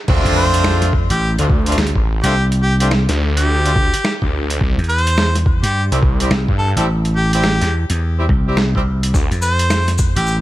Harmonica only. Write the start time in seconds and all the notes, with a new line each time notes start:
0.36 C5
1.11 G4
2.23 G4
2.63 G4
2.80 G4
3.37 G4
4.89 C5
5.63 G4
6.58 A4
6.77 A4
7.16 G4
7.34 G4
9.42 C5
10.16 G4